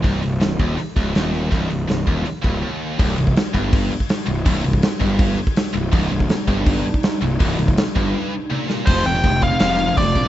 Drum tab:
CC |----------------|----------------|x-x-x-x-x-x-x-x-|x-x-x-x-x-x-x-x-|
HH |o-o-o-o-o-o-o-o-|o-o-o-o-o-o-----|----------------|----------------|
SD |----o-------o---|----o-----------|----o-------o---|----o-------o---|
T1 |----------------|----------------|----------------|----------------|
BD |o-----o---o-----|o-----o---o-----|o--o--o-o--o----|o--o--o-o--o----|

CC |x-x-x-x-x-x-x-x-|x-x-x-x---------|x-x-x-x-x-x-x-x-|
HH |----------------|----------------|----------------|
SD |----o-------o---|----o---------o-|--------o-------|
T1 |----------------|------------o---|----------------|
BD |o--o--o-o--o----|o--o--o---------|o---o-o-----o-o-|